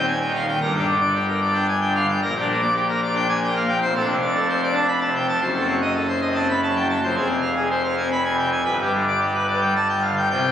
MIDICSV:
0, 0, Header, 1, 2, 480
1, 0, Start_track
1, 0, Tempo, 535236
1, 543, Time_signature, 3, 2, 24, 8
1, 6780, Tempo, 549954
1, 9362, End_track
2, 0, Start_track
2, 0, Title_t, "Pipe organ"
2, 0, Program_c, 0, 19
2, 0, Note_on_c, 0, 27, 76
2, 0, Note_on_c, 0, 39, 72
2, 66, Note_on_c, 0, 80, 72
2, 166, Note_off_c, 0, 80, 0
2, 187, Note_on_c, 0, 79, 67
2, 235, Note_on_c, 0, 51, 60
2, 292, Note_off_c, 0, 79, 0
2, 314, Note_on_c, 0, 77, 54
2, 373, Note_off_c, 0, 51, 0
2, 411, Note_off_c, 0, 77, 0
2, 431, Note_on_c, 0, 79, 62
2, 509, Note_off_c, 0, 39, 0
2, 510, Note_off_c, 0, 27, 0
2, 530, Note_off_c, 0, 79, 0
2, 547, Note_on_c, 0, 43, 82
2, 550, Note_on_c, 0, 70, 74
2, 551, Note_on_c, 0, 31, 81
2, 654, Note_off_c, 0, 70, 0
2, 670, Note_on_c, 0, 67, 56
2, 708, Note_on_c, 0, 62, 60
2, 775, Note_off_c, 0, 67, 0
2, 792, Note_on_c, 0, 50, 60
2, 850, Note_off_c, 0, 62, 0
2, 896, Note_off_c, 0, 50, 0
2, 902, Note_on_c, 0, 74, 56
2, 1011, Note_off_c, 0, 74, 0
2, 1028, Note_on_c, 0, 67, 67
2, 1134, Note_off_c, 0, 67, 0
2, 1146, Note_on_c, 0, 70, 61
2, 1253, Note_off_c, 0, 70, 0
2, 1271, Note_on_c, 0, 74, 72
2, 1348, Note_on_c, 0, 62, 57
2, 1376, Note_off_c, 0, 74, 0
2, 1387, Note_on_c, 0, 79, 62
2, 1490, Note_off_c, 0, 62, 0
2, 1493, Note_off_c, 0, 79, 0
2, 1511, Note_on_c, 0, 80, 68
2, 1611, Note_off_c, 0, 80, 0
2, 1627, Note_on_c, 0, 79, 71
2, 1672, Note_on_c, 0, 50, 63
2, 1734, Note_off_c, 0, 79, 0
2, 1754, Note_on_c, 0, 77, 52
2, 1813, Note_off_c, 0, 50, 0
2, 1853, Note_off_c, 0, 77, 0
2, 1872, Note_on_c, 0, 79, 61
2, 1953, Note_off_c, 0, 43, 0
2, 1955, Note_off_c, 0, 31, 0
2, 1972, Note_off_c, 0, 79, 0
2, 1994, Note_on_c, 0, 34, 89
2, 1994, Note_on_c, 0, 46, 90
2, 1996, Note_on_c, 0, 70, 83
2, 2099, Note_off_c, 0, 70, 0
2, 2118, Note_on_c, 0, 67, 67
2, 2152, Note_on_c, 0, 62, 62
2, 2221, Note_off_c, 0, 67, 0
2, 2231, Note_on_c, 0, 58, 70
2, 2293, Note_off_c, 0, 62, 0
2, 2337, Note_off_c, 0, 58, 0
2, 2347, Note_on_c, 0, 74, 65
2, 2454, Note_off_c, 0, 74, 0
2, 2471, Note_on_c, 0, 67, 68
2, 2575, Note_off_c, 0, 67, 0
2, 2590, Note_on_c, 0, 70, 62
2, 2694, Note_off_c, 0, 70, 0
2, 2714, Note_on_c, 0, 74, 76
2, 2790, Note_on_c, 0, 62, 63
2, 2816, Note_off_c, 0, 74, 0
2, 2828, Note_on_c, 0, 79, 67
2, 2929, Note_off_c, 0, 62, 0
2, 2932, Note_off_c, 0, 79, 0
2, 2949, Note_on_c, 0, 80, 91
2, 3048, Note_off_c, 0, 80, 0
2, 3078, Note_on_c, 0, 79, 80
2, 3111, Note_on_c, 0, 58, 70
2, 3179, Note_off_c, 0, 79, 0
2, 3191, Note_on_c, 0, 77, 54
2, 3250, Note_off_c, 0, 58, 0
2, 3289, Note_off_c, 0, 77, 0
2, 3303, Note_on_c, 0, 79, 68
2, 3390, Note_off_c, 0, 34, 0
2, 3390, Note_off_c, 0, 46, 0
2, 3404, Note_off_c, 0, 79, 0
2, 3424, Note_on_c, 0, 72, 93
2, 3425, Note_on_c, 0, 29, 96
2, 3427, Note_on_c, 0, 41, 89
2, 3530, Note_off_c, 0, 72, 0
2, 3549, Note_on_c, 0, 69, 61
2, 3585, Note_on_c, 0, 62, 63
2, 3652, Note_off_c, 0, 69, 0
2, 3667, Note_on_c, 0, 48, 72
2, 3726, Note_off_c, 0, 62, 0
2, 3771, Note_off_c, 0, 48, 0
2, 3787, Note_on_c, 0, 74, 67
2, 3891, Note_off_c, 0, 74, 0
2, 3903, Note_on_c, 0, 69, 77
2, 4009, Note_off_c, 0, 69, 0
2, 4028, Note_on_c, 0, 72, 66
2, 4133, Note_off_c, 0, 72, 0
2, 4149, Note_on_c, 0, 74, 80
2, 4221, Note_on_c, 0, 62, 72
2, 4254, Note_off_c, 0, 74, 0
2, 4256, Note_on_c, 0, 81, 77
2, 4365, Note_off_c, 0, 62, 0
2, 4366, Note_off_c, 0, 81, 0
2, 4374, Note_on_c, 0, 83, 84
2, 4480, Note_off_c, 0, 83, 0
2, 4496, Note_on_c, 0, 81, 81
2, 4540, Note_on_c, 0, 48, 73
2, 4605, Note_off_c, 0, 81, 0
2, 4623, Note_on_c, 0, 79, 55
2, 4683, Note_off_c, 0, 48, 0
2, 4725, Note_off_c, 0, 79, 0
2, 4741, Note_on_c, 0, 81, 76
2, 4827, Note_off_c, 0, 29, 0
2, 4828, Note_off_c, 0, 41, 0
2, 4843, Note_off_c, 0, 81, 0
2, 4851, Note_on_c, 0, 30, 86
2, 4851, Note_on_c, 0, 42, 106
2, 4852, Note_on_c, 0, 72, 89
2, 4962, Note_off_c, 0, 72, 0
2, 4971, Note_on_c, 0, 69, 70
2, 5016, Note_on_c, 0, 60, 62
2, 5082, Note_off_c, 0, 69, 0
2, 5097, Note_on_c, 0, 54, 78
2, 5160, Note_off_c, 0, 60, 0
2, 5204, Note_off_c, 0, 54, 0
2, 5216, Note_on_c, 0, 75, 70
2, 5324, Note_off_c, 0, 75, 0
2, 5333, Note_on_c, 0, 69, 75
2, 5442, Note_off_c, 0, 69, 0
2, 5452, Note_on_c, 0, 72, 62
2, 5562, Note_off_c, 0, 72, 0
2, 5572, Note_on_c, 0, 75, 72
2, 5653, Note_on_c, 0, 60, 59
2, 5682, Note_off_c, 0, 75, 0
2, 5696, Note_on_c, 0, 81, 72
2, 5798, Note_off_c, 0, 60, 0
2, 5804, Note_off_c, 0, 81, 0
2, 5822, Note_on_c, 0, 83, 77
2, 5923, Note_off_c, 0, 83, 0
2, 5945, Note_on_c, 0, 81, 73
2, 5978, Note_on_c, 0, 54, 71
2, 6049, Note_off_c, 0, 81, 0
2, 6062, Note_on_c, 0, 79, 59
2, 6121, Note_off_c, 0, 54, 0
2, 6162, Note_off_c, 0, 79, 0
2, 6182, Note_on_c, 0, 81, 75
2, 6257, Note_off_c, 0, 42, 0
2, 6258, Note_off_c, 0, 30, 0
2, 6283, Note_off_c, 0, 81, 0
2, 6302, Note_on_c, 0, 29, 99
2, 6305, Note_on_c, 0, 41, 95
2, 6307, Note_on_c, 0, 72, 86
2, 6411, Note_off_c, 0, 72, 0
2, 6420, Note_on_c, 0, 68, 74
2, 6453, Note_on_c, 0, 60, 64
2, 6527, Note_off_c, 0, 68, 0
2, 6538, Note_on_c, 0, 48, 68
2, 6599, Note_off_c, 0, 60, 0
2, 6646, Note_off_c, 0, 48, 0
2, 6656, Note_on_c, 0, 77, 60
2, 6765, Note_off_c, 0, 77, 0
2, 6784, Note_on_c, 0, 68, 66
2, 6887, Note_off_c, 0, 68, 0
2, 6907, Note_on_c, 0, 72, 61
2, 7008, Note_off_c, 0, 72, 0
2, 7024, Note_on_c, 0, 77, 65
2, 7104, Note_on_c, 0, 60, 62
2, 7125, Note_off_c, 0, 77, 0
2, 7143, Note_on_c, 0, 80, 60
2, 7241, Note_off_c, 0, 60, 0
2, 7244, Note_off_c, 0, 80, 0
2, 7266, Note_on_c, 0, 83, 68
2, 7361, Note_off_c, 0, 83, 0
2, 7379, Note_on_c, 0, 80, 71
2, 7426, Note_on_c, 0, 48, 63
2, 7482, Note_off_c, 0, 80, 0
2, 7503, Note_on_c, 0, 79, 46
2, 7562, Note_off_c, 0, 48, 0
2, 7599, Note_off_c, 0, 79, 0
2, 7616, Note_on_c, 0, 80, 54
2, 7697, Note_off_c, 0, 29, 0
2, 7698, Note_off_c, 0, 41, 0
2, 7716, Note_off_c, 0, 80, 0
2, 7728, Note_on_c, 0, 31, 73
2, 7729, Note_on_c, 0, 71, 72
2, 7730, Note_on_c, 0, 43, 81
2, 7837, Note_off_c, 0, 71, 0
2, 7865, Note_on_c, 0, 67, 60
2, 7899, Note_on_c, 0, 55, 53
2, 7967, Note_off_c, 0, 67, 0
2, 7981, Note_on_c, 0, 50, 58
2, 8040, Note_off_c, 0, 55, 0
2, 8085, Note_off_c, 0, 50, 0
2, 8100, Note_on_c, 0, 74, 54
2, 8205, Note_off_c, 0, 74, 0
2, 8216, Note_on_c, 0, 67, 62
2, 8323, Note_off_c, 0, 67, 0
2, 8337, Note_on_c, 0, 71, 51
2, 8444, Note_off_c, 0, 71, 0
2, 8452, Note_on_c, 0, 74, 52
2, 8535, Note_on_c, 0, 55, 52
2, 8561, Note_off_c, 0, 74, 0
2, 8574, Note_on_c, 0, 79, 58
2, 8679, Note_off_c, 0, 55, 0
2, 8682, Note_off_c, 0, 79, 0
2, 8698, Note_on_c, 0, 81, 67
2, 8799, Note_off_c, 0, 81, 0
2, 8819, Note_on_c, 0, 79, 59
2, 8859, Note_on_c, 0, 50, 51
2, 8926, Note_off_c, 0, 79, 0
2, 8933, Note_on_c, 0, 77, 42
2, 9002, Note_off_c, 0, 50, 0
2, 9038, Note_off_c, 0, 77, 0
2, 9057, Note_on_c, 0, 79, 53
2, 9143, Note_off_c, 0, 31, 0
2, 9144, Note_off_c, 0, 43, 0
2, 9158, Note_off_c, 0, 79, 0
2, 9174, Note_on_c, 0, 36, 78
2, 9175, Note_on_c, 0, 48, 79
2, 9175, Note_on_c, 0, 79, 93
2, 9362, Note_off_c, 0, 36, 0
2, 9362, Note_off_c, 0, 48, 0
2, 9362, Note_off_c, 0, 79, 0
2, 9362, End_track
0, 0, End_of_file